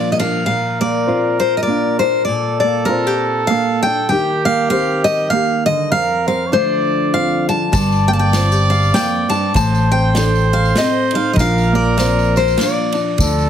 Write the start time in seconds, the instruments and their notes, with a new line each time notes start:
Already playing: nylon-string guitar A#2 F3 A#3 D4, upright piano A#3, trumpet F4, steel-string acoustic guitar D5
0.12 steel-string acoustic guitar D#5
0.19 nylon-string guitar A#3, upright piano D4, steel-string acoustic guitar F5, ride, tambourine
0.46 nylon-string guitar A#2, trumpet A#4, steel-string acoustic guitar F5
0.81 upright piano A#3, steel-string acoustic guitar D5
1.07 upright piano C4, nylon-string guitar F4
1.40 steel-string acoustic guitar C5
1.57 steel-string acoustic guitar D#5
1.63 steel-string acoustic guitar D5
1.67 upright piano A#3, nylon-string guitar D4
1.99 upright piano D4, steel-string acoustic guitar C5
2.25 nylon-string guitar A#2, trumpet A4, steel-string acoustic guitar D5
2.60 upright piano A#3, steel-string acoustic guitar D5
2.85 nylon-string guitar F4, steel-string acoustic guitar A#4
2.90 upright piano C4
3.07 nylon-string guitar G4
3.47 upright piano A#3, nylon-string guitar D4, steel-string acoustic guitar F5
3.83 upright piano D4, steel-string acoustic guitar G5
4.09 nylon-string guitar D#3 A#3 D#4 G4, trumpet G4, steel-string acoustic guitar G5
4.45 upright piano A#3, steel-string acoustic guitar F5
4.70 upright piano C4, nylon-string guitar G4, steel-string acoustic guitar F5
5.04 steel-string acoustic guitar D#5
5.30 upright piano A#3, nylon-string guitar G4, steel-string acoustic guitar F5
5.66 upright piano D3, steel-string acoustic guitar D#5
5.91 nylon-string guitar F2, trumpet A#4, steel-string acoustic guitar F5
6.27 upright piano C4, steel-string acoustic guitar F5
6.46 trumpet C#5
6.52 nylon-string guitar D3 F3 A3 D4 F4, upright piano D4, steel-string acoustic guitar C5, trumpet D5
7.14 upright piano C4, nylon-string guitar F4, steel-string acoustic guitar F5
7.49 upright piano D4, steel-string acoustic guitar A5
7.72 fingered electric bass G1, nylon-string guitar G2, trumpet D5, steel-string acoustic guitar A5, kick, ride, tambourine
7.92 tambourine
8.08 upright piano A#3, steel-string acoustic guitar G5
8.13 steel-string acoustic guitar A5
8.19 steel-string acoustic guitar G5
8.33 upright piano C4, nylon-string guitar F4, snare, ride, tambourine
8.52 nylon-string guitar G4, tambourine
8.70 steel-string acoustic guitar F5, tambourine
8.83 tambourine
8.94 nylon-string guitar F2, upright piano A#3, steel-string acoustic guitar G5, snare, ride, tambourine
9.29 nylon-string guitar G2, upright piano D4, steel-string acoustic guitar A5, ride, tambourine
9.54 fingered electric bass A1, nylon-string guitar A2, trumpet C5, steel-string acoustic guitar A5, kick, ride, tambourine
9.75 tambourine
9.91 upright piano C4, steel-string acoustic guitar G5
10.15 upright piano D4, nylon-string guitar A4, snare, ride, tambourine
10.36 tambourine
10.53 steel-string acoustic guitar F5
10.65 tambourine
10.75 upright piano C4, nylon-string guitar C4, steel-string acoustic guitar D#5, snare, ride, tambourine
11.11 upright piano D#4, ride
11.15 steel-string acoustic guitar F5
11.33 fingered electric bass A#1, trumpet A#4, steel-string acoustic guitar D#5, kick, ride
11.39 nylon-string guitar A#2 F3 A#3 D4 F4, steel-string acoustic guitar F5, tambourine
11.58 tambourine
11.73 upright piano A#3, steel-string acoustic guitar D5
11.98 upright piano C4, nylon-string guitar F4, snare, ride, tambourine
12.19 tambourine
12.36 steel-string acoustic guitar C5, tambourine
12.48 tambourine
12.58 upright piano A#3, nylon-string guitar D4, snare, ride, tambourine
12.63 steel-string acoustic guitar D5
12.92 upright piano D4, ride, tambourine
13.18 fingered electric bass D2, trumpet A4, kick, ride, tambourine
13.22 nylon-string guitar D3
13.39 tambourine